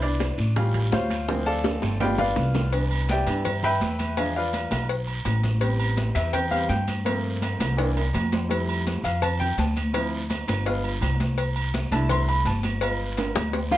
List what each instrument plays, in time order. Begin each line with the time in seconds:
Already playing: upright bass C2, grand piano B3 E4
0.02 grand piano D4 D5, high conga, high timbale
0.20 high bongo, high conga, high timbale, short guiro
0.38 upright bass A1, high conga, short guiro
0.56 grand piano G3 C#4 F4, high bongo, high conga, low conga, high timbale, long guiro
0.74 high conga, low conga, high timbale
0.92 upright bass D2, grand piano F4 C5 C#5 F5, high bongo, low bongo, high conga, low timbale, short guiro
1.10 high conga, high timbale, short guiro
1.28 grand piano E3 F3 C4, high bongo, high conga, high timbale, long guiro
1.46 grand piano A4 D5 F5 A5, high bongo, high conga
1.64 high bongo, high conga, high timbale, short guiro
1.82 upright bass G1, high bongo, low timbale, short guiro
2.00 grand piano G#3 B3 F4 G4 B4 D5 G5, low conga, low timbale, long guiro
2.18 grand piano F4 B4 D5 F5, low bongo, low conga
2.36 upright bass C2, low bongo, low conga, short guiro
2.54 low bongo, low conga, low timbale, short guiro
2.72 grand piano E3 B3 D4, cowbell, high conga, low agogo, long guiro
2.91 high conga, low agogo
3.08 grand piano G4 D5 E5 G5, cowbell, high conga, short guiro
3.26 upright bass G2, grand piano E3 B3 D4, cowbell, low agogo, short guiro
3.45 cowbell, high conga, low conga, low agogo, long guiro
3.63 grand piano B4 E5 G5 B5, high conga, low conga, low agogo
3.80 upright bass E2, cowbell, high conga, low timbale, short guiro
3.99 cowbell, high conga, low agogo, short guiro
4.17 grand piano F3 G#3 D4 G#4 E5 F5 G#5, cowbell, high conga, low agogo, long guiro
4.36 grand piano F4 B4 D5 F5, high conga
4.53 cowbell, high conga, low agogo, short guiro
4.71 upright bass B1, cowbell, high conga, low agogo, short guiro
4.89 cowbell, high conga, long guiro
5.07 high conga, low agogo
5.25 upright bass A1, cowbell, high conga, low timbale, low agogo, short guiro
5.43 cowbell, high conga, short guiro
5.60 grand piano G3 B3 C4, cowbell, high conga, low agogo, long guiro
5.80 high conga, low agogo
5.97 cowbell, high conga, short guiro
6.15 upright bass E2, grand piano E5, cowbell, high conga, low agogo, short guiro
6.33 grand piano G5, cowbell, high conga, low conga, low agogo, long guiro
6.51 grand piano G3 B3 C4 F5, high conga, low conga, low agogo
6.69 upright bass G2, grand piano G5, cowbell, high conga, low timbale, short guiro
6.87 cowbell, high conga, low agogo, short guiro
7.05 grand piano F3 A3 A#3 C4, cowbell, high conga, low agogo, long guiro
7.25 high conga
7.42 cowbell, high conga, low agogo, short guiro
7.60 upright bass C2, cowbell, high conga, low agogo, short guiro
7.77 grand piano E3 A#3 D4, cowbell, high conga, high timbale, long guiro
7.97 high conga, high timbale, low agogo
8.14 upright bass F2, cowbell, high conga, low timbale, low agogo, short guiro
8.32 cowbell, high conga, low timbale, short guiro
8.49 grand piano G3 A3 E4, cowbell, high conga, low agogo, long guiro
8.69 high conga, low agogo
8.87 cowbell, high conga, short guiro
9.04 upright bass F2, grand piano F5, cowbell, low agogo, short guiro
9.22 grand piano A5, cowbell, high conga, low conga, low agogo, long guiro
9.40 grand piano G5, high conga, low conga, low agogo
9.58 upright bass D2, grand piano A5, cowbell, high conga, low timbale, short guiro
9.76 cowbell, high conga, low agogo, short guiro
9.93 grand piano F3 C4 E4, cowbell, high conga, low agogo, long guiro
10.13 high conga
10.30 cowbell, high conga, low agogo, short guiro
10.47 upright bass G1, cowbell, high conga, low agogo, short guiro
10.65 grand piano G#3 B3 F4, cowbell, high conga, long guiro
10.84 high conga, low agogo
11.01 upright bass C2, cowbell, high conga, low timbale, low agogo, short guiro
11.20 cowbell, high conga, short guiro
11.38 cowbell, high conga, low agogo, long guiro
11.56 high conga, low agogo
11.74 cowbell, high conga, short guiro
11.91 upright bass C2, grand piano A3 D4 E4 A5, cowbell, high conga, low agogo, short guiro
12.09 grand piano C6, cowbell, high conga, low conga, low agogo, long guiro
12.28 grand piano B5, high conga, low agogo
12.45 upright bass G1, grand piano A5, cowbell, high conga, short guiro
12.63 cowbell, high conga, low agogo, short guiro
12.81 grand piano G#3 B3 F4, cowbell, high conga, low agogo, long guiro
13.01 high conga
13.17 cowbell, high conga, high timbale, low agogo, short guiro
13.35 upright bass D2, cowbell, high bongo, high conga, low agogo, short guiro
13.53 cowbell, high bongo, high conga, low timbale, long guiro
13.71 tenor saxophone F4, flute F5, low bongo, low timbale, low agogo